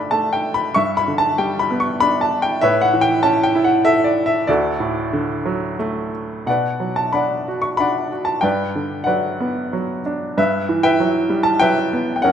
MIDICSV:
0, 0, Header, 1, 2, 480
1, 0, Start_track
1, 0, Key_signature, 2, "major"
1, 0, Tempo, 645161
1, 557, Time_signature, 3, 2, 24, 8
1, 1037, Tempo, 617284
1, 3437, Tempo, 665927
1, 4873, Key_signature, 2, "minor"
1, 5837, Tempo, 643087
1, 7757, Tempo, 620476
1, 9256, End_track
2, 0, Start_track
2, 0, Title_t, "Upright piano"
2, 0, Program_c, 0, 0
2, 0, Control_c, 0, 64, 127
2, 0, Note_on_c, 0, 43, 45
2, 0, Note_on_c, 0, 50, 36
2, 0, Note_on_c, 0, 57, 38
2, 0, Note_on_c, 0, 62, 42
2, 0, Note_on_c, 0, 67, 45
2, 0, Note_on_c, 0, 69, 45
2, 0, Note_on_c, 0, 74, 66
2, 0, Note_on_c, 0, 79, 56
2, 0, Note_on_c, 0, 81, 53
2, 0, Note_on_c, 0, 83, 57
2, 76, Note_off_c, 0, 57, 0
2, 81, Note_off_c, 0, 81, 0
2, 81, Note_on_c, 0, 81, 69
2, 88, Note_on_c, 0, 57, 43
2, 243, Note_off_c, 0, 79, 0
2, 243, Note_on_c, 0, 79, 68
2, 244, Note_off_c, 0, 81, 0
2, 289, Note_off_c, 0, 50, 0
2, 404, Note_off_c, 0, 83, 0
2, 404, Note_on_c, 0, 83, 74
2, 405, Note_off_c, 0, 79, 0
2, 533, Note_off_c, 0, 43, 0
2, 541, Note_off_c, 0, 62, 0
2, 548, Note_off_c, 0, 57, 0
2, 550, Note_off_c, 0, 83, 0
2, 554, Note_on_c, 0, 85, 83
2, 563, Note_on_c, 0, 76, 63
2, 564, Note_on_c, 0, 43, 52
2, 568, Control_c, 0, 64, 0
2, 575, Note_off_c, 0, 67, 0
2, 575, Note_off_c, 0, 69, 0
2, 575, Note_off_c, 0, 74, 0
2, 689, Control_c, 0, 64, 127
2, 704, Note_off_c, 0, 85, 0
2, 722, Note_on_c, 0, 83, 75
2, 802, Note_on_c, 0, 50, 47
2, 880, Note_on_c, 0, 81, 80
2, 884, Note_off_c, 0, 83, 0
2, 1029, Note_on_c, 0, 79, 61
2, 1032, Note_on_c, 0, 55, 50
2, 1043, Note_off_c, 0, 81, 0
2, 1193, Note_on_c, 0, 83, 71
2, 1203, Note_off_c, 0, 79, 0
2, 1255, Note_off_c, 0, 76, 0
2, 1281, Note_on_c, 0, 59, 45
2, 1347, Note_off_c, 0, 83, 0
2, 1353, Note_on_c, 0, 85, 69
2, 1512, Note_on_c, 0, 83, 95
2, 1522, Note_off_c, 0, 85, 0
2, 1525, Note_on_c, 0, 62, 50
2, 1673, Note_on_c, 0, 81, 69
2, 1680, Note_off_c, 0, 83, 0
2, 1732, Note_off_c, 0, 50, 0
2, 1822, Note_off_c, 0, 81, 0
2, 1837, Note_on_c, 0, 79, 74
2, 1963, Note_off_c, 0, 55, 0
2, 1967, Note_off_c, 0, 43, 0
2, 1972, Note_off_c, 0, 59, 0
2, 1981, Note_off_c, 0, 62, 0
2, 1986, Note_on_c, 0, 76, 86
2, 1996, Note_on_c, 0, 45, 54
2, 1999, Note_off_c, 0, 79, 0
2, 2002, Note_on_c, 0, 73, 59
2, 2003, Note_on_c, 0, 71, 60
2, 2005, Control_c, 0, 64, 0
2, 2138, Control_c, 0, 64, 127
2, 2142, Note_on_c, 0, 78, 71
2, 2153, Note_off_c, 0, 76, 0
2, 2235, Note_on_c, 0, 52, 49
2, 2294, Note_off_c, 0, 78, 0
2, 2297, Note_on_c, 0, 79, 84
2, 2463, Note_on_c, 0, 81, 84
2, 2470, Note_off_c, 0, 79, 0
2, 2470, Note_on_c, 0, 61, 50
2, 2617, Note_off_c, 0, 81, 0
2, 2624, Note_on_c, 0, 79, 74
2, 2685, Note_off_c, 0, 73, 0
2, 2686, Note_off_c, 0, 71, 0
2, 2716, Note_on_c, 0, 64, 59
2, 2787, Note_on_c, 0, 78, 70
2, 2793, Note_off_c, 0, 79, 0
2, 2937, Note_off_c, 0, 78, 0
2, 2944, Note_on_c, 0, 69, 51
2, 2945, Note_on_c, 0, 76, 88
2, 3097, Note_on_c, 0, 74, 69
2, 3112, Note_off_c, 0, 76, 0
2, 3164, Note_off_c, 0, 52, 0
2, 3254, Note_off_c, 0, 74, 0
2, 3266, Note_on_c, 0, 76, 75
2, 3406, Note_off_c, 0, 45, 0
2, 3407, Note_off_c, 0, 61, 0
2, 3417, Note_off_c, 0, 64, 0
2, 3419, Note_off_c, 0, 69, 0
2, 3432, Note_on_c, 0, 74, 79
2, 3438, Note_off_c, 0, 76, 0
2, 3440, Note_on_c, 0, 38, 56
2, 3447, Control_c, 0, 64, 0
2, 3448, Note_on_c, 0, 66, 54
2, 3450, Note_on_c, 0, 69, 54
2, 3590, Control_c, 0, 64, 127
2, 3668, Note_on_c, 0, 45, 52
2, 3907, Note_on_c, 0, 50, 53
2, 4140, Note_on_c, 0, 54, 56
2, 4352, Note_off_c, 0, 74, 0
2, 4360, Note_off_c, 0, 66, 0
2, 4361, Note_off_c, 0, 69, 0
2, 4383, Note_on_c, 0, 57, 54
2, 4600, Note_off_c, 0, 45, 0
2, 4846, Note_off_c, 0, 38, 0
2, 4846, Note_off_c, 0, 50, 0
2, 4851, Note_off_c, 0, 54, 0
2, 4858, Note_off_c, 0, 57, 0
2, 4867, Note_on_c, 0, 47, 44
2, 4872, Note_on_c, 0, 78, 62
2, 4883, Control_c, 0, 64, 0
2, 4886, Note_on_c, 0, 74, 45
2, 4889, Note_on_c, 0, 71, 43
2, 4992, Control_c, 0, 64, 127
2, 5110, Note_on_c, 0, 54, 38
2, 5225, Note_on_c, 0, 81, 61
2, 5248, Note_off_c, 0, 78, 0
2, 5344, Note_off_c, 0, 81, 0
2, 5344, Note_on_c, 0, 83, 60
2, 5350, Note_off_c, 0, 74, 0
2, 5351, Note_on_c, 0, 62, 36
2, 5359, Note_on_c, 0, 78, 46
2, 5361, Note_on_c, 0, 74, 42
2, 5580, Note_off_c, 0, 71, 0
2, 5600, Note_on_c, 0, 66, 40
2, 5685, Note_off_c, 0, 83, 0
2, 5697, Note_on_c, 0, 85, 64
2, 5810, Note_on_c, 0, 83, 72
2, 5819, Note_off_c, 0, 62, 0
2, 5820, Note_off_c, 0, 78, 0
2, 5822, Note_off_c, 0, 74, 0
2, 5828, Note_off_c, 0, 85, 0
2, 5830, Note_on_c, 0, 62, 42
2, 5831, Note_on_c, 0, 78, 53
2, 5833, Note_on_c, 0, 74, 49
2, 6041, Note_off_c, 0, 54, 0
2, 6057, Note_off_c, 0, 66, 0
2, 6069, Note_on_c, 0, 66, 39
2, 6153, Note_off_c, 0, 83, 0
2, 6164, Note_on_c, 0, 81, 64
2, 6275, Note_off_c, 0, 47, 0
2, 6276, Note_off_c, 0, 78, 0
2, 6277, Note_off_c, 0, 74, 0
2, 6284, Note_on_c, 0, 79, 67
2, 6285, Note_off_c, 0, 81, 0
2, 6291, Note_off_c, 0, 62, 0
2, 6298, Note_off_c, 0, 66, 0
2, 6299, Note_on_c, 0, 43, 52
2, 6303, Note_on_c, 0, 74, 49
2, 6308, Note_on_c, 0, 71, 50
2, 6318, Control_c, 0, 64, 0
2, 6433, Control_c, 0, 64, 127
2, 6542, Note_on_c, 0, 50, 39
2, 6739, Note_off_c, 0, 79, 0
2, 6754, Note_on_c, 0, 78, 56
2, 6761, Note_off_c, 0, 74, 0
2, 6764, Note_off_c, 0, 71, 0
2, 6772, Note_on_c, 0, 74, 39
2, 6776, Note_on_c, 0, 71, 43
2, 6779, Note_on_c, 0, 54, 43
2, 7027, Note_on_c, 0, 59, 48
2, 7259, Note_off_c, 0, 54, 0
2, 7271, Note_on_c, 0, 54, 47
2, 7473, Note_off_c, 0, 78, 0
2, 7482, Note_off_c, 0, 74, 0
2, 7484, Note_off_c, 0, 71, 0
2, 7487, Note_off_c, 0, 50, 0
2, 7516, Note_on_c, 0, 62, 44
2, 7720, Note_off_c, 0, 43, 0
2, 7735, Note_off_c, 0, 59, 0
2, 7740, Note_off_c, 0, 54, 0
2, 7747, Note_off_c, 0, 62, 0
2, 7752, Note_on_c, 0, 43, 58
2, 7752, Note_on_c, 0, 71, 54
2, 7754, Note_on_c, 0, 76, 74
2, 7765, Control_c, 0, 64, 0
2, 7904, Control_c, 0, 64, 127
2, 7995, Note_on_c, 0, 52, 55
2, 8087, Note_off_c, 0, 76, 0
2, 8096, Note_off_c, 0, 71, 0
2, 8106, Note_on_c, 0, 79, 82
2, 8108, Note_on_c, 0, 71, 59
2, 8111, Note_on_c, 0, 76, 69
2, 8235, Note_on_c, 0, 54, 50
2, 8464, Note_on_c, 0, 55, 49
2, 8570, Note_on_c, 0, 81, 78
2, 8594, Note_off_c, 0, 79, 0
2, 8689, Note_off_c, 0, 81, 0
2, 8695, Note_off_c, 0, 54, 0
2, 8695, Note_off_c, 0, 76, 0
2, 8695, Note_on_c, 0, 79, 90
2, 8697, Note_off_c, 0, 71, 0
2, 8706, Note_on_c, 0, 54, 48
2, 8706, Note_on_c, 0, 76, 59
2, 8709, Note_on_c, 0, 71, 62
2, 8920, Note_off_c, 0, 52, 0
2, 8955, Note_on_c, 0, 59, 43
2, 9120, Note_off_c, 0, 79, 0
2, 9132, Note_on_c, 0, 79, 51
2, 9161, Note_off_c, 0, 43, 0
2, 9163, Note_off_c, 0, 76, 0
2, 9165, Note_off_c, 0, 71, 0
2, 9171, Note_off_c, 0, 55, 0
2, 9179, Note_on_c, 0, 78, 76
2, 9180, Note_off_c, 0, 54, 0
2, 9188, Note_off_c, 0, 79, 0
2, 9190, Note_off_c, 0, 59, 0
2, 9193, Note_on_c, 0, 73, 46
2, 9196, Note_on_c, 0, 42, 54
2, 9197, Note_on_c, 0, 70, 46
2, 9203, Control_c, 0, 64, 0
2, 9256, Note_off_c, 0, 42, 0
2, 9256, Note_off_c, 0, 70, 0
2, 9256, Note_off_c, 0, 73, 0
2, 9256, Note_off_c, 0, 78, 0
2, 9256, End_track
0, 0, End_of_file